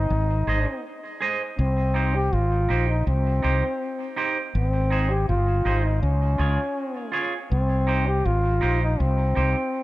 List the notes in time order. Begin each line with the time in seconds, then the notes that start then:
Already playing: D#4
0.10 G#1
0.47 G#1 G#4 C5 D#5
0.66 muted clean electric guitar stroke
1.21 G#4 C5 D#5
1.59 C2 C4
1.94 D#4 G4 C5
2.15 G4
2.33 G#1 F4
2.69 A#1 D#4 G4 C5
2.90 D#4
3.07 C2 C4
3.42 C2 D#4 G4 C5
4.16 D#4 G4 C5
4.55 G#1 C4
4.90 D#4 G#4 C5
5.10 G4
5.29 G1 F4
5.65 G#1 D#4 G#4 C5
5.83 D#4, muted clean electric guitar stroke
6.02 C#2 C#4
6.38 C#2 F4 G#4 C#5
7.12 F4 G#4 C#5
7.52 C2 C4
7.87 D#4 G4 C5
8.07 G4
8.25 G#1 F4
8.61 A#1 D#4 G4 C5
8.82 D#4
9.00 C2 C4
9.35 C2 D#4 G4 C5